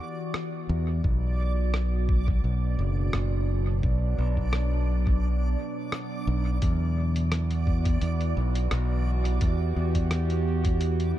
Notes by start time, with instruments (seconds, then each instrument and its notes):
Already playing: ambient pad E3 B3 F#4 G4, synth texture D5
0.34 cross-stick
0.69 fingered electric bass E2
1.04 fingered electric bass B1, ambient pad B2, kick
1.64 ambient pad F#3
1.74 cross-stick
2.09 kick
2.28 kick
2.44 fingered electric bass B1, ambient pad D4
2.79 fingered electric bass F#1
3.13 fingered electric bass F#1, cross-stick
3.83 fingered electric bass B1, kick
4.18 fingered electric bass B1
4.37 kick
4.53 cross-stick
5.07 kick
5.92 cross-stick
6.27 fingered electric bass B1
6.62 fingered electric bass E2, ambient pad E3, kick, closed hi-hat
7.01 ambient pad F#4
7.07 ambient pad B3
7.16 closed hi-hat
7.32 cross-stick, closed hi-hat
7.51 closed hi-hat
7.67 kick
7.85 kick, closed hi-hat
8.01 fingered electric bass E2, closed hi-hat
8.21 closed hi-hat
8.37 fingered electric bass B1
8.55 closed hi-hat
8.71 fingered electric bass B1, cross-stick, closed hi-hat
9.14 ambient pad G4
9.25 closed hi-hat
9.41 fingered electric bass E2, kick, closed hi-hat
9.76 fingered electric bass E2
9.95 kick, closed hi-hat
10.11 cross-stick, closed hi-hat
10.30 closed hi-hat
10.65 kick, closed hi-hat
10.81 closed hi-hat
11.00 closed hi-hat